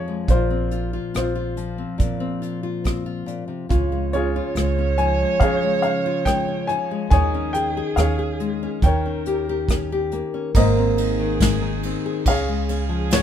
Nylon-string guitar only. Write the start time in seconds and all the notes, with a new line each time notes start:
Already playing: F2 F3
0.08 G#3
0.28 A#2
0.50 C4
0.72 F4
0.93 F4
1.15 C4
1.35 F4
1.57 F3
1.78 C4
1.98 A#2
2.20 C4
2.42 F4
2.63 F4
2.84 C4
3.06 F4
3.26 A#2
3.48 C3
3.69 C#3
3.92 G#3
4.14 C#4
4.36 F4
4.57 G#3
4.78 C#4
4.98 F3
5.21 G#3
5.41 C#3
5.63 G#3
5.84 C#4
6.06 F4
6.27 G#3
6.48 C#4
6.70 F3
6.91 G#3
7.12 D#3
7.34 C#4
7.56 G#4
7.77 G#4
7.98 C#4
8.19 G#4
8.40 G#3
8.63 C#4
8.83 D#3
9.06 C#4
9.27 G4
9.49 G4
9.71 C#4
9.92 G4
10.13 A#3
10.34 C#4
10.55 G#2
10.78 C4
10.99 D#4
11.19 D#3
11.41 G#2
11.62 D#3
11.85 C4
12.06 G#4
12.27 C#3
12.48 G#3
12.70 C#4
12.89 F3
13.10 G#2